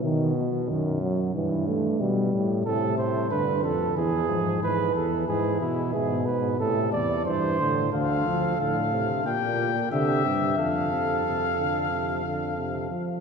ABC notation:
X:1
M:4/4
L:1/8
Q:1/4=91
K:Am
V:1 name="Trumpet"
z8 | z8 | z8 | [K:F] f2 f2 g2 e2 |
f6- f z |]
V:2 name="Flugelhorn"
z8 | A c B A ^G2 B A | ^G E G B A d c2 | [K:F] A4 G2 G2 |
A6- A z |]
V:3 name="Euphonium" clef=bass
^D, B,, D, ^F, E, A, G,2 | C,2 D, z E, F, E,2 | E,2 B,,2 C,2 E, D, | [K:F] D, F, D, C, B,,2 D, C, |
D, C, C, D, C, D, C, F, |]
V:4 name="Bass trombone" clef=bass
B,,2 ^F,,2 G,,2 B,, A,, | A,, A,, G,, F,, E,, ^G,, G,, E,, | ^G,, B,, G,, G,, A,, E,, =G,, A,, | [K:F] D,, D,, A,,2 B,,2 C, G,, |
F,,6- F,, z |]